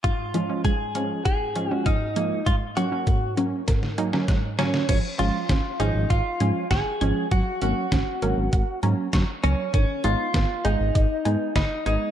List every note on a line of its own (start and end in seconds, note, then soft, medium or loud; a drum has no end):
0.04 0.20 G#2 medium
0.04 0.49 G#2 medium
0.04 0.61 F4 medium
0.04 kick loud
0.04 closed hi-hat medium
0.34 0.47 F3 medium
0.34 0.51 F3 medium
0.34 0.47 G#3 medium
0.34 0.47 C#4 medium
0.34 closed hi-hat medium
0.49 0.74 F3 medium
0.49 0.74 G#3 medium
0.49 0.74 C#4 medium
0.64 1.10 G#2 medium
0.64 0.81 G#3 medium
0.64 1.24 G#4 medium
0.64 kick loud
0.64 closed hi-hat medium
0.95 1.20 F3 medium
0.95 1.20 G#3 medium
0.95 1.11 C#4 medium
0.95 1.20 C#4 medium
0.95 closed hi-hat medium
1.25 1.71 G#2 medium
1.25 1.42 G#4 medium
1.25 1.73 G#4 loud
1.25 kick loud
1.25 closed hi-hat medium
1.56 1.68 F3 medium
1.56 1.68 G#3 medium
1.56 1.68 C#4 medium
1.56 1.72 G#5 medium
1.56 closed hi-hat medium
1.71 1.95 F3 medium
1.71 1.95 G#3 medium
1.71 1.95 C#4 medium
1.71 1.88 F#4 loud
1.86 2.31 G#2 medium
1.86 2.48 D#4 medium
1.86 2.02 F6 loud
1.86 kick loud
1.86 closed hi-hat medium
2.16 2.41 F3 medium
2.16 2.41 G#3 medium
2.16 2.41 A#3 medium
2.16 2.33 G#6 medium
2.16 closed hi-hat medium
2.46 2.63 G#2 medium
2.46 2.92 G#2 medium
2.46 2.55 F4 medium
2.46 kick loud
2.46 closed hi-hat medium
2.77 2.93 F#3 medium
2.77 2.89 F#3 medium
2.77 2.89 A#3 medium
2.77 2.89 C#4 medium
2.77 3.33 F#4 medium
2.77 closed hi-hat medium
2.92 3.16 F#3 medium
2.92 3.16 A#3 medium
2.92 3.16 C#4 medium
3.07 3.52 G#2 medium
3.07 3.24 A#3 medium
3.07 kick loud
3.07 closed hi-hat medium
3.37 3.62 F#3 medium
3.37 3.62 A#3 medium
3.37 3.62 C#4 medium
3.37 3.54 C#4 medium
3.37 closed hi-hat medium
3.68 4.13 G#2 medium
3.68 3.84 A#4 medium
3.68 kick loud
3.68 snare soft
3.68 closed hi-hat medium
3.83 snare soft
3.98 4.10 F#3 medium
3.98 4.10 A#3 medium
3.98 4.10 D#4 loud
3.98 4.14 G#5 medium
3.98 closed hi-hat medium
4.13 4.38 F#3 medium
4.13 4.38 A#3 medium
4.13 4.38 C#4 medium
4.13 snare medium
4.28 4.74 G#2 medium
4.28 4.45 F#6 loud
4.28 kick loud
4.28 snare medium
4.28 closed hi-hat medium
4.59 4.83 F#3 medium
4.59 4.83 A#3 medium
4.59 4.88 C#4 medium
4.59 4.83 C#4 loud
4.59 4.75 A#6 medium
4.59 snare medium
4.59 closed hi-hat medium
4.74 snare medium
4.89 5.00 G#1 loud
4.89 5.05 F3 medium
4.89 4.97 C#4 medium
4.89 kick loud
4.89 closed hi-hat medium
4.89 crash medium
5.19 5.30 G#1 loud
5.19 5.44 F3 medium
5.19 5.36 G#3 medium
5.19 5.44 G#3 medium
5.19 5.44 C#4 medium
5.19 5.82 F4 medium
5.19 closed hi-hat medium
5.49 5.61 G#1 loud
5.49 5.66 C#4 medium
5.49 kick loud
5.49 snare loud
5.49 closed hi-hat medium
5.80 5.91 G#1 loud
5.80 6.04 F3 medium
5.80 6.04 G#3 medium
5.80 6.04 C#4 medium
5.80 6.11 D#4 medium
5.80 5.96 G#4 medium
5.80 closed hi-hat medium
5.95 6.06 G#1 medium
6.10 6.21 G#1 loud
6.10 6.67 F4 loud
6.10 6.27 F5 medium
6.10 kick loud
6.10 closed hi-hat medium
6.40 6.52 G#2 loud
6.40 6.65 F3 medium
6.40 6.65 G#3 medium
6.40 6.65 C#4 medium
6.40 6.57 G#5 medium
6.40 closed hi-hat medium
6.71 6.82 G#1 loud
6.71 7.27 G#4 loud
6.71 6.87 C#6 loud
6.71 kick loud
6.71 snare loud
6.71 closed hi-hat medium
7.01 7.12 G#1 medium
7.01 7.26 F3 medium
7.01 7.26 G#3 medium
7.01 7.26 C#4 medium
7.01 7.18 G#6 medium
7.01 closed hi-hat medium
7.31 7.43 G#1 loud
7.31 7.48 F#3 medium
7.31 7.61 F#4 loud
7.31 kick loud
7.31 closed hi-hat medium
7.62 7.73 G#1 loud
7.62 7.86 F#3 medium
7.62 7.86 A#3 medium
7.62 7.78 A#3 medium
7.62 7.86 C#4 medium
7.62 8.79 F#4 medium
7.62 closed hi-hat medium
7.92 8.03 G#1 medium
7.92 8.08 C#4 medium
7.92 kick loud
7.92 snare loud
7.92 closed hi-hat medium
8.22 8.33 G#1 medium
8.22 8.47 F#3 medium
8.22 8.47 A#3 medium
8.22 8.47 C#4 medium
8.22 8.39 A#4 medium
8.22 closed hi-hat medium
8.38 8.49 G#1 medium
8.53 8.64 G#1 medium
8.53 8.69 F#5 medium
8.53 kick loud
8.53 closed hi-hat medium
8.83 8.94 G#2 loud
8.83 9.07 F#3 medium
8.83 9.07 A#3 medium
8.83 9.07 C#4 loud
8.83 8.99 A#5 medium
8.83 closed hi-hat medium
9.13 9.24 F#2 loud
9.13 9.30 C#6 loud
9.13 kick loud
9.13 snare loud
9.13 closed hi-hat medium
9.44 9.55 C#2 medium
9.44 9.68 F#3 medium
9.44 9.68 A#3 medium
9.44 9.72 C#4 medium
9.44 9.68 C#4 medium
9.44 9.60 A#6 medium
9.44 closed hi-hat medium
9.74 9.85 G#1 loud
9.74 9.90 D#3 medium
9.74 10.02 C#4 medium
9.74 kick loud
9.74 closed hi-hat medium
10.04 10.15 G#1 loud
10.04 10.29 G#3 medium
10.04 10.21 G#3 medium
10.04 10.29 B3 medium
10.04 10.29 D#4 medium
10.04 10.67 F4 loud
10.04 closed hi-hat medium
10.34 10.45 G#1 loud
10.34 10.51 B3 medium
10.34 kick loud
10.34 snare loud
10.34 closed hi-hat medium
10.65 10.76 G#1 loud
10.65 10.89 G#3 medium
10.65 10.89 B3 medium
10.65 11.55 D#4 loud
10.65 10.89 D#4 medium
10.65 10.81 G#4 medium
10.65 closed hi-hat medium
10.80 10.91 G#1 loud
10.95 11.06 G#1 loud
10.95 11.11 D#5 medium
10.95 kick loud
10.95 closed hi-hat medium
11.25 11.37 G#2 medium
11.25 11.50 G#3 medium
11.25 11.50 B3 medium
11.25 11.50 D#4 medium
11.25 11.42 G#5 medium
11.25 closed hi-hat medium
11.56 11.67 G#1 loud
11.56 11.84 D#4 medium
11.56 11.72 B5 loud
11.56 kick loud
11.56 snare loud
11.56 closed hi-hat medium
11.86 11.97 G#1 medium
11.86 12.10 G#3 medium
11.86 12.10 B3 medium
11.86 12.10 D#4 medium
11.86 12.11 D#4 medium
11.86 12.02 G#6 medium
11.86 closed hi-hat medium